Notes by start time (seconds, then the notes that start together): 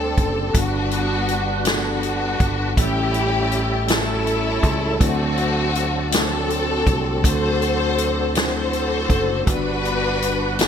Already playing: D2 D3 G3 C4 D4 G4 A4
0.17 F#1, kick, closed hi-hat
0.53 G1 G2 G3 B3 D4 F#4 B4, kick, closed hi-hat
0.91 closed hi-hat
1.28 closed hi-hat
1.65 B3 D4 F#4 A4, snare, closed hi-hat
1.69 B3 D4 F#4
2.03 closed hi-hat
2.40 G1, kick, closed hi-hat
2.77 A1 A2 G3 A3 C4 C#4 E4 G4 A4, kick, closed hi-hat
2.84 C#4
3.14 closed hi-hat
3.52 closed hi-hat
3.87 A3 C#4 E4 F#4 A4, snare, closed hi-hat
4.27 closed hi-hat
4.63 C#2, kick, closed hi-hat
4.99 D2 D3 F#3 A3 C4 D4 E4 F#4 A4, kick, closed hi-hat
5.09 F#4
5.38 closed hi-hat
5.75 closed hi-hat
6.11 A3 C4 D4 F#4 A4, snare, closed hi-hat
6.50 closed hi-hat
6.86 C2, kick, closed hi-hat
7.23 D2 D3 A3 C4 D4 F#4 A4, kick, closed hi-hat
7.27 F#4 C5
7.62 closed hi-hat
7.98 closed hi-hat
8.35 A3 C4 D4 E4 F#4 A4 C5, snare, closed hi-hat
8.73 closed hi-hat
9.09 F#1, kick, closed hi-hat
9.46 G1 G2 G3 A3 D4 F#4 A4 B4, kick, closed hi-hat
9.54 B3 B4
9.85 closed hi-hat
10.22 closed hi-hat
10.59 G3 B3 D4 E4 F#4, snare, closed hi-hat